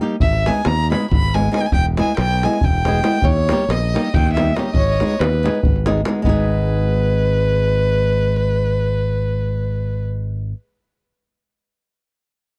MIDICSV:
0, 0, Header, 1, 5, 480
1, 0, Start_track
1, 0, Key_signature, 5, "minor"
1, 0, Tempo, 431344
1, 240, Time_signature, 7, 3, 24, 8
1, 8880, Tempo, 427350
1, 14052, End_track
2, 0, Start_track
2, 0, Title_t, "Violin"
2, 0, Program_c, 0, 40
2, 234, Note_on_c, 0, 76, 127
2, 525, Note_on_c, 0, 80, 112
2, 542, Note_off_c, 0, 76, 0
2, 743, Note_on_c, 0, 82, 126
2, 760, Note_off_c, 0, 80, 0
2, 1023, Note_off_c, 0, 82, 0
2, 1029, Note_on_c, 0, 83, 92
2, 1231, Note_off_c, 0, 83, 0
2, 1237, Note_on_c, 0, 83, 116
2, 1493, Note_on_c, 0, 80, 105
2, 1510, Note_off_c, 0, 83, 0
2, 1707, Note_off_c, 0, 80, 0
2, 1719, Note_on_c, 0, 80, 100
2, 1801, Note_on_c, 0, 79, 85
2, 1817, Note_off_c, 0, 80, 0
2, 1850, Note_on_c, 0, 80, 100
2, 1866, Note_off_c, 0, 79, 0
2, 1919, Note_off_c, 0, 80, 0
2, 1925, Note_on_c, 0, 79, 121
2, 2054, Note_off_c, 0, 79, 0
2, 2217, Note_on_c, 0, 80, 106
2, 2415, Note_off_c, 0, 80, 0
2, 2425, Note_on_c, 0, 79, 126
2, 2720, Note_on_c, 0, 80, 107
2, 2736, Note_off_c, 0, 79, 0
2, 2946, Note_on_c, 0, 79, 113
2, 2963, Note_off_c, 0, 80, 0
2, 3607, Note_on_c, 0, 73, 127
2, 3624, Note_off_c, 0, 79, 0
2, 4125, Note_on_c, 0, 75, 113
2, 4141, Note_off_c, 0, 73, 0
2, 4607, Note_on_c, 0, 79, 105
2, 4624, Note_off_c, 0, 75, 0
2, 4823, Note_off_c, 0, 79, 0
2, 4830, Note_on_c, 0, 76, 96
2, 5061, Note_on_c, 0, 75, 85
2, 5078, Note_off_c, 0, 76, 0
2, 5097, Note_on_c, 0, 73, 76
2, 5113, Note_off_c, 0, 75, 0
2, 5172, Note_on_c, 0, 75, 101
2, 5188, Note_off_c, 0, 73, 0
2, 5293, Note_on_c, 0, 73, 126
2, 5310, Note_off_c, 0, 75, 0
2, 5466, Note_on_c, 0, 75, 100
2, 5483, Note_off_c, 0, 73, 0
2, 5634, Note_on_c, 0, 73, 109
2, 5650, Note_off_c, 0, 75, 0
2, 5778, Note_on_c, 0, 71, 96
2, 5795, Note_off_c, 0, 73, 0
2, 6353, Note_off_c, 0, 71, 0
2, 6986, Note_on_c, 0, 71, 105
2, 11187, Note_off_c, 0, 71, 0
2, 14052, End_track
3, 0, Start_track
3, 0, Title_t, "Nylon-string guitar"
3, 0, Program_c, 1, 24
3, 11, Note_on_c, 1, 55, 71
3, 14, Note_on_c, 1, 58, 69
3, 18, Note_on_c, 1, 63, 69
3, 30, Note_on_c, 1, 67, 81
3, 161, Note_off_c, 1, 58, 0
3, 162, Note_off_c, 1, 55, 0
3, 165, Note_off_c, 1, 63, 0
3, 170, Note_off_c, 1, 67, 0
3, 517, Note_on_c, 1, 56, 71
3, 523, Note_on_c, 1, 59, 62
3, 534, Note_on_c, 1, 63, 69
3, 535, Note_on_c, 1, 68, 90
3, 669, Note_off_c, 1, 56, 0
3, 670, Note_off_c, 1, 59, 0
3, 676, Note_off_c, 1, 68, 0
3, 677, Note_off_c, 1, 63, 0
3, 1005, Note_on_c, 1, 56, 68
3, 1017, Note_on_c, 1, 59, 60
3, 1024, Note_on_c, 1, 63, 59
3, 1026, Note_on_c, 1, 68, 72
3, 1165, Note_off_c, 1, 56, 0
3, 1171, Note_off_c, 1, 59, 0
3, 1172, Note_off_c, 1, 63, 0
3, 1175, Note_off_c, 1, 68, 0
3, 1497, Note_on_c, 1, 56, 70
3, 1497, Note_on_c, 1, 59, 61
3, 1504, Note_on_c, 1, 63, 56
3, 1515, Note_on_c, 1, 68, 82
3, 1639, Note_off_c, 1, 59, 0
3, 1640, Note_off_c, 1, 56, 0
3, 1643, Note_off_c, 1, 63, 0
3, 1649, Note_off_c, 1, 68, 0
3, 1685, Note_on_c, 1, 56, 68
3, 1687, Note_on_c, 1, 59, 62
3, 1695, Note_on_c, 1, 63, 58
3, 1702, Note_on_c, 1, 68, 72
3, 1837, Note_off_c, 1, 59, 0
3, 1838, Note_off_c, 1, 56, 0
3, 1844, Note_off_c, 1, 63, 0
3, 1845, Note_off_c, 1, 68, 0
3, 2194, Note_on_c, 1, 56, 81
3, 2202, Note_on_c, 1, 59, 74
3, 2204, Note_on_c, 1, 64, 79
3, 2217, Note_on_c, 1, 68, 77
3, 2347, Note_off_c, 1, 56, 0
3, 2348, Note_off_c, 1, 59, 0
3, 2351, Note_off_c, 1, 64, 0
3, 2358, Note_off_c, 1, 68, 0
3, 2715, Note_on_c, 1, 56, 77
3, 2726, Note_on_c, 1, 59, 69
3, 2729, Note_on_c, 1, 64, 64
3, 2731, Note_on_c, 1, 68, 72
3, 2860, Note_off_c, 1, 56, 0
3, 2865, Note_off_c, 1, 68, 0
3, 2866, Note_off_c, 1, 59, 0
3, 2866, Note_off_c, 1, 64, 0
3, 3185, Note_on_c, 1, 56, 70
3, 3195, Note_on_c, 1, 59, 69
3, 3206, Note_on_c, 1, 68, 86
3, 3207, Note_on_c, 1, 64, 67
3, 3324, Note_off_c, 1, 56, 0
3, 3329, Note_off_c, 1, 59, 0
3, 3334, Note_off_c, 1, 68, 0
3, 3336, Note_off_c, 1, 64, 0
3, 3373, Note_on_c, 1, 56, 69
3, 3381, Note_on_c, 1, 59, 70
3, 3387, Note_on_c, 1, 64, 65
3, 3390, Note_on_c, 1, 68, 70
3, 3522, Note_off_c, 1, 56, 0
3, 3526, Note_off_c, 1, 59, 0
3, 3528, Note_off_c, 1, 64, 0
3, 3531, Note_off_c, 1, 68, 0
3, 3895, Note_on_c, 1, 55, 83
3, 3903, Note_on_c, 1, 63, 72
3, 3911, Note_on_c, 1, 58, 73
3, 3917, Note_on_c, 1, 67, 87
3, 4038, Note_off_c, 1, 55, 0
3, 4041, Note_off_c, 1, 63, 0
3, 4046, Note_off_c, 1, 58, 0
3, 4049, Note_off_c, 1, 67, 0
3, 4385, Note_on_c, 1, 55, 65
3, 4394, Note_on_c, 1, 58, 62
3, 4399, Note_on_c, 1, 63, 69
3, 4400, Note_on_c, 1, 67, 80
3, 4535, Note_off_c, 1, 55, 0
3, 4541, Note_off_c, 1, 58, 0
3, 4542, Note_off_c, 1, 63, 0
3, 4542, Note_off_c, 1, 67, 0
3, 4858, Note_on_c, 1, 55, 69
3, 4863, Note_on_c, 1, 63, 68
3, 4865, Note_on_c, 1, 58, 64
3, 4871, Note_on_c, 1, 67, 75
3, 5003, Note_off_c, 1, 55, 0
3, 5004, Note_off_c, 1, 58, 0
3, 5005, Note_off_c, 1, 63, 0
3, 5007, Note_off_c, 1, 67, 0
3, 5076, Note_on_c, 1, 55, 64
3, 5089, Note_on_c, 1, 58, 57
3, 5091, Note_on_c, 1, 63, 63
3, 5105, Note_on_c, 1, 67, 65
3, 5215, Note_off_c, 1, 55, 0
3, 5221, Note_off_c, 1, 58, 0
3, 5222, Note_off_c, 1, 63, 0
3, 5229, Note_off_c, 1, 67, 0
3, 5569, Note_on_c, 1, 56, 70
3, 5575, Note_on_c, 1, 59, 69
3, 5584, Note_on_c, 1, 63, 73
3, 5596, Note_on_c, 1, 68, 80
3, 5716, Note_off_c, 1, 56, 0
3, 5720, Note_off_c, 1, 59, 0
3, 5722, Note_off_c, 1, 63, 0
3, 5729, Note_off_c, 1, 68, 0
3, 6042, Note_on_c, 1, 56, 67
3, 6052, Note_on_c, 1, 59, 59
3, 6065, Note_on_c, 1, 63, 57
3, 6075, Note_on_c, 1, 68, 70
3, 6205, Note_off_c, 1, 56, 0
3, 6210, Note_off_c, 1, 59, 0
3, 6216, Note_off_c, 1, 63, 0
3, 6222, Note_off_c, 1, 68, 0
3, 6520, Note_on_c, 1, 56, 79
3, 6524, Note_on_c, 1, 59, 77
3, 6528, Note_on_c, 1, 68, 100
3, 6530, Note_on_c, 1, 63, 81
3, 6675, Note_off_c, 1, 56, 0
3, 6675, Note_off_c, 1, 59, 0
3, 6676, Note_off_c, 1, 63, 0
3, 6678, Note_off_c, 1, 68, 0
3, 6744, Note_on_c, 1, 56, 78
3, 6764, Note_on_c, 1, 59, 65
3, 6767, Note_on_c, 1, 63, 66
3, 6772, Note_on_c, 1, 68, 72
3, 6889, Note_off_c, 1, 56, 0
3, 6900, Note_off_c, 1, 59, 0
3, 6900, Note_off_c, 1, 63, 0
3, 6904, Note_off_c, 1, 68, 0
3, 6924, Note_on_c, 1, 56, 82
3, 6955, Note_on_c, 1, 59, 84
3, 6970, Note_on_c, 1, 63, 76
3, 6999, Note_on_c, 1, 68, 93
3, 11697, Note_off_c, 1, 56, 0
3, 11728, Note_off_c, 1, 59, 0
3, 11744, Note_off_c, 1, 63, 0
3, 11772, Note_off_c, 1, 68, 0
3, 14052, End_track
4, 0, Start_track
4, 0, Title_t, "Fingered electric bass"
4, 0, Program_c, 2, 33
4, 240, Note_on_c, 2, 32, 105
4, 543, Note_off_c, 2, 32, 0
4, 734, Note_on_c, 2, 39, 92
4, 1041, Note_off_c, 2, 39, 0
4, 1239, Note_on_c, 2, 32, 105
4, 1644, Note_off_c, 2, 32, 0
4, 1914, Note_on_c, 2, 28, 103
4, 2219, Note_off_c, 2, 28, 0
4, 2427, Note_on_c, 2, 35, 111
4, 2730, Note_off_c, 2, 35, 0
4, 2933, Note_on_c, 2, 28, 103
4, 3334, Note_off_c, 2, 28, 0
4, 3603, Note_on_c, 2, 39, 97
4, 3906, Note_off_c, 2, 39, 0
4, 4102, Note_on_c, 2, 34, 94
4, 4407, Note_off_c, 2, 34, 0
4, 4630, Note_on_c, 2, 39, 107
4, 5027, Note_off_c, 2, 39, 0
4, 5282, Note_on_c, 2, 32, 111
4, 5585, Note_off_c, 2, 32, 0
4, 5789, Note_on_c, 2, 39, 91
4, 6092, Note_off_c, 2, 39, 0
4, 6287, Note_on_c, 2, 32, 82
4, 6691, Note_off_c, 2, 32, 0
4, 6966, Note_on_c, 2, 32, 103
4, 11739, Note_off_c, 2, 32, 0
4, 14052, End_track
5, 0, Start_track
5, 0, Title_t, "Davul"
5, 225, Note_on_c, 9, 43, 88
5, 337, Note_off_c, 9, 43, 0
5, 369, Note_on_c, 9, 37, 25
5, 480, Note_off_c, 9, 37, 0
5, 514, Note_on_c, 9, 37, 66
5, 625, Note_off_c, 9, 37, 0
5, 723, Note_on_c, 9, 37, 82
5, 834, Note_off_c, 9, 37, 0
5, 1024, Note_on_c, 9, 37, 75
5, 1118, Note_off_c, 9, 37, 0
5, 1118, Note_on_c, 9, 37, 28
5, 1229, Note_off_c, 9, 37, 0
5, 1248, Note_on_c, 9, 43, 97
5, 1360, Note_off_c, 9, 43, 0
5, 1390, Note_on_c, 9, 37, 26
5, 1501, Note_off_c, 9, 37, 0
5, 1504, Note_on_c, 9, 37, 62
5, 1615, Note_off_c, 9, 37, 0
5, 1715, Note_on_c, 9, 37, 70
5, 1827, Note_off_c, 9, 37, 0
5, 1918, Note_on_c, 9, 43, 78
5, 2030, Note_off_c, 9, 43, 0
5, 2059, Note_on_c, 9, 37, 25
5, 2171, Note_off_c, 9, 37, 0
5, 2197, Note_on_c, 9, 37, 69
5, 2308, Note_off_c, 9, 37, 0
5, 2417, Note_on_c, 9, 37, 76
5, 2528, Note_off_c, 9, 37, 0
5, 2707, Note_on_c, 9, 37, 64
5, 2818, Note_off_c, 9, 37, 0
5, 2818, Note_on_c, 9, 37, 31
5, 2907, Note_on_c, 9, 43, 89
5, 2929, Note_off_c, 9, 37, 0
5, 3019, Note_off_c, 9, 43, 0
5, 3045, Note_on_c, 9, 37, 24
5, 3156, Note_off_c, 9, 37, 0
5, 3174, Note_on_c, 9, 37, 65
5, 3285, Note_off_c, 9, 37, 0
5, 3381, Note_on_c, 9, 37, 69
5, 3493, Note_off_c, 9, 37, 0
5, 3584, Note_on_c, 9, 43, 91
5, 3696, Note_off_c, 9, 43, 0
5, 3748, Note_on_c, 9, 37, 29
5, 3859, Note_off_c, 9, 37, 0
5, 3882, Note_on_c, 9, 37, 76
5, 3993, Note_off_c, 9, 37, 0
5, 4118, Note_on_c, 9, 37, 85
5, 4229, Note_off_c, 9, 37, 0
5, 4407, Note_on_c, 9, 37, 72
5, 4518, Note_off_c, 9, 37, 0
5, 4518, Note_on_c, 9, 37, 28
5, 4607, Note_on_c, 9, 43, 106
5, 4629, Note_off_c, 9, 37, 0
5, 4718, Note_off_c, 9, 43, 0
5, 4734, Note_on_c, 9, 37, 27
5, 4845, Note_off_c, 9, 37, 0
5, 4864, Note_on_c, 9, 37, 76
5, 4975, Note_off_c, 9, 37, 0
5, 5080, Note_on_c, 9, 37, 71
5, 5191, Note_off_c, 9, 37, 0
5, 5278, Note_on_c, 9, 43, 84
5, 5389, Note_off_c, 9, 43, 0
5, 5451, Note_on_c, 9, 37, 24
5, 5562, Note_off_c, 9, 37, 0
5, 5566, Note_on_c, 9, 37, 65
5, 5677, Note_off_c, 9, 37, 0
5, 5692, Note_on_c, 9, 37, 26
5, 5799, Note_off_c, 9, 37, 0
5, 5799, Note_on_c, 9, 37, 89
5, 5910, Note_off_c, 9, 37, 0
5, 5934, Note_on_c, 9, 37, 29
5, 6045, Note_off_c, 9, 37, 0
5, 6071, Note_on_c, 9, 37, 76
5, 6175, Note_off_c, 9, 37, 0
5, 6175, Note_on_c, 9, 37, 30
5, 6268, Note_on_c, 9, 43, 105
5, 6287, Note_off_c, 9, 37, 0
5, 6379, Note_off_c, 9, 43, 0
5, 6408, Note_on_c, 9, 37, 26
5, 6519, Note_off_c, 9, 37, 0
5, 6520, Note_on_c, 9, 37, 76
5, 6631, Note_off_c, 9, 37, 0
5, 6649, Note_on_c, 9, 37, 29
5, 6736, Note_off_c, 9, 37, 0
5, 6736, Note_on_c, 9, 37, 88
5, 6848, Note_off_c, 9, 37, 0
5, 6946, Note_on_c, 9, 43, 80
5, 7057, Note_off_c, 9, 43, 0
5, 14052, End_track
0, 0, End_of_file